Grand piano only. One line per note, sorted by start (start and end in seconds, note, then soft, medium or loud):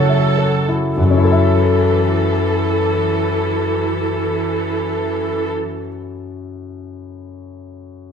0.00 0.99 C#3 soft
0.00 1.00 C#4 soft
0.00 0.69 E4 soft
0.00 0.38 A4 soft
0.00 0.28 C#5 soft
0.00 0.09 E5 soft
0.09 0.56 E5 soft
0.38 0.85 A4 soft
0.69 0.97 E4 soft
0.97 5.52 F#2 soft
1.03 5.58 F#3 soft
1.11 5.66 C#4 soft
1.17 5.72 E4 soft
1.25 5.80 A4 soft
1.32 5.87 E5 soft